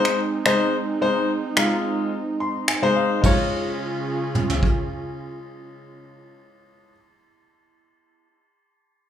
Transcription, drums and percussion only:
0.05 finger snap
0.46 finger snap
1.57 finger snap
2.68 finger snap
3.24 kick, ride
4.35 mid tom
4.50 floor tom
4.63 kick

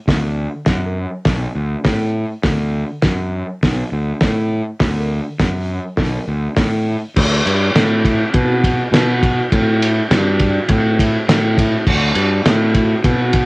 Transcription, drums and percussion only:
0.08 kick, snare, open hi-hat
0.66 kick, snare, open hi-hat
1.25 kick, snare, open hi-hat
1.85 kick, snare, open hi-hat
2.43 kick, snare, open hi-hat
3.02 kick, snare, open hi-hat
3.63 kick, snare, open hi-hat
4.21 kick, snare, open hi-hat
4.80 kick, snare, open hi-hat
5.39 kick, snare, open hi-hat
5.97 kick, snare, open hi-hat
6.56 kick, snare, open hi-hat
7.16 kick, crash
7.47 ride
7.75 snare, ride
8.05 kick, ride
8.34 kick, ride
8.64 kick, ride
8.94 snare, ride
9.23 kick, ride
9.52 kick, ride
9.82 ride
10.11 snare, ride
10.39 kick, ride
10.69 kick, ride
10.99 kick, ride
11.29 snare, ride
11.58 kick, ride
11.87 kick, crash
12.15 ride
12.46 snare, ride
12.75 kick, ride
13.04 kick, ride
13.33 kick, ride

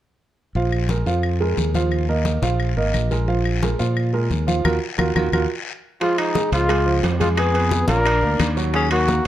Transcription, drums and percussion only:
0.55 high conga, long guiro
0.72 high conga, claves
0.89 high conga, short guiro
1.06 high conga, short guiro
1.23 high conga, long guiro, claves
1.40 high conga
1.57 high conga, short guiro
1.74 high conga, short guiro
1.91 high conga, long guiro, claves
2.08 high conga
2.25 high conga, short guiro
2.43 high conga, short guiro
2.60 high conga, long guiro, claves
2.77 high conga
2.94 high conga, short guiro, claves
3.11 high conga, short guiro
3.28 high conga, long guiro
3.45 high conga, claves
3.62 high conga, short guiro
3.79 high conga, short guiro
3.97 high conga, long guiro, claves
4.14 high conga
4.31 high conga, short guiro
4.48 high conga, short guiro
4.65 high conga, long guiro, claves
4.99 high conga, long guiro, claves
5.16 high conga, long guiro, claves
5.33 high conga, long guiro, claves
6.01 high bongo, high conga, high timbale, long guiro
6.18 high bongo, high conga, high timbale, claves
6.35 high bongo, high conga, short guiro
6.53 high bongo, high conga, high timbale, short guiro
6.69 high bongo, high conga, high timbale, long guiro, claves
6.86 high bongo, high conga
7.03 high bongo, low bongo, high conga, high timbale, low timbale, short guiro
7.20 high conga, high timbale, short guiro
7.37 high bongo, high timbale, long guiro, claves
7.54 high bongo, high conga, high timbale
7.71 high bongo, high conga, short guiro
7.88 high bongo, high conga, high timbale, short guiro
8.05 high bongo, high timbale, long guiro, claves
8.23 high bongo, high conga
8.40 high bongo, low bongo, high conga, high timbale, short guiro, claves
8.57 short guiro
8.74 high bongo, high conga, high timbale, long guiro
8.91 high bongo, high conga, high timbale, claves
9.08 high bongo, high conga, short guiro

